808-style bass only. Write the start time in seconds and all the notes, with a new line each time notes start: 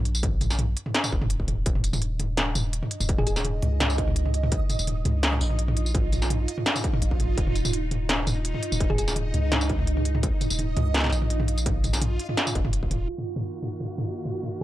Already playing: A#1
1.13 F1
1.30 D#1
1.66 D#1
2.55 D#1
3.00 D#1
3.63 C#2
4.79 D#1
5.06 C#2
5.41 A#1
7.02 A#1
7.38 D#1
8.27 D#1
8.72 D#1
9.34 C#2
10.51 D#1
10.77 C#2
11.12 A#1
12.55 F1
12.73 D#1